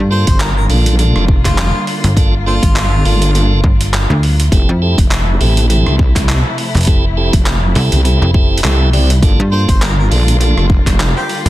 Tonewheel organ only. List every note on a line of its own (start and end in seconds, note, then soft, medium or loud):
0.11 0.29 A#3 medium
0.11 0.28 D4 medium
0.11 0.29 F4 medium
0.11 0.28 A4 medium
0.70 0.95 A#3 medium
0.70 0.95 D4 medium
0.70 0.95 F4 medium
0.70 0.95 A4 medium
0.99 1.25 A#3 medium
0.99 1.25 D4 medium
0.99 1.25 F4 medium
0.99 1.25 A4 medium
2.17 2.34 A#3 loud
2.17 2.35 D4 medium
2.17 2.34 F4 medium
2.17 2.34 A4 loud
2.46 2.64 A#3 medium
2.46 2.64 D4 medium
2.46 2.64 F4 medium
2.46 2.64 A4 medium
3.06 3.31 A#3 medium
3.06 3.31 D4 medium
3.06 3.31 F4 medium
3.06 3.31 A4 medium
3.35 3.61 A#3 medium
3.35 3.61 D4 medium
3.35 3.60 F4 medium
3.35 3.60 A4 medium
4.52 4.70 C4 medium
4.52 4.70 E4 medium
4.52 4.70 G4 medium
4.52 4.70 A4 loud
4.82 4.99 C4 medium
4.82 4.99 E4 medium
4.82 4.99 G4 medium
4.82 4.99 A4 medium
5.41 5.66 C4 medium
5.41 5.66 E4 medium
5.41 5.66 G4 medium
5.41 5.66 A4 medium
5.70 5.96 C4 medium
5.70 5.96 E4 medium
5.70 5.96 G4 medium
5.70 5.96 A4 medium
6.87 7.05 C4 loud
6.87 7.05 E4 medium
6.87 7.05 G4 medium
6.87 7.05 A4 loud
7.17 7.35 C4 medium
7.17 7.35 E4 medium
7.17 7.35 G4 medium
7.17 7.35 A4 medium
7.75 8.01 C4 medium
7.75 8.01 E4 medium
7.75 8.01 G4 medium
7.75 8.01 A4 medium
8.05 8.31 C4 medium
8.05 8.31 E4 medium
8.05 8.31 G4 medium
8.05 8.31 A4 medium
8.34 8.61 C4 loud
8.34 8.61 E4 medium
8.34 8.61 G4 loud
8.34 8.61 A4 loud
8.64 8.90 C4 loud
8.64 8.89 E4 medium
8.64 8.89 G4 medium
8.64 8.90 A4 loud
8.93 9.11 C4 medium
8.93 9.11 E4 medium
8.93 9.11 G4 medium
8.93 9.11 D5 loud
9.23 9.40 A#3 medium
9.23 9.40 D4 medium
9.23 9.40 F4 medium
9.23 9.40 A4 loud
9.52 9.70 A#3 medium
9.52 9.70 D4 medium
9.52 9.70 F4 medium
9.52 9.70 A4 medium
10.11 10.37 A#3 medium
10.11 10.37 D4 medium
10.11 10.37 F4 medium
10.11 10.37 A4 medium
10.41 10.66 A#3 medium
10.41 10.66 D4 medium
10.41 10.66 F4 medium
10.41 10.66 A4 medium